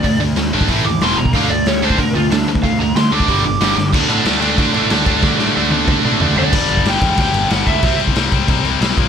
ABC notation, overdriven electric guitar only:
X:1
M:4/4
L:1/8
Q:1/4=185
K:Dmix
V:1 name="Overdriven electric guitar"
[D,A,] [D,A,] [D,A,] [D,A,D] [A,,E,A,] [A,,E,] [E,,B,,E,] [E,,B,,] | [D,A,D] [D,A,] [D,A,] [D,A,D] [D,A,] [D,A,] [D,A,] [D,A,] | [D,A,] [D,A,] [D,A,] [D,A,D] [G,,D,G,] [G,,D,] [G,,D,G,] [G,,D,] | [D,A,D] [D,A,D] [D,A,D] [D,A,D] [D,A,D] [D,A,D] [D,A,D] [D,A,D] |
[D,A,D] [D,A,D] [D,A,D] [D,A,D] [D,A,D] [D,A,D] [D,A,D] [D,A,D] | z8 | z8 |]